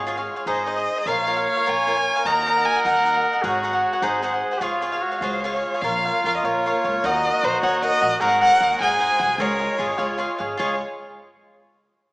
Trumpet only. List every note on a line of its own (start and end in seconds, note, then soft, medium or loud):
0.00 0.20 G#4 medium
0.47 0.84 G#4 medium
1.08 2.23 C#5 loud
2.27 3.44 A#4 loud
3.42 4.05 F#4 loud
4.03 4.64 G#4 medium
4.62 5.03 F4 medium
5.02 5.35 F#4 medium
5.63 5.81 F4 medium
5.84 7.07 F4 medium
7.06 8.22 F#4 loud
8.21 8.80 A#4 loud
8.82 9.41 G#4 loud
9.40 9.79 A#4 loud
9.79 10.00 G#4 medium
9.98 10.42 F4 medium
10.41 10.59 G#4 medium
10.59 10.78 G#4 medium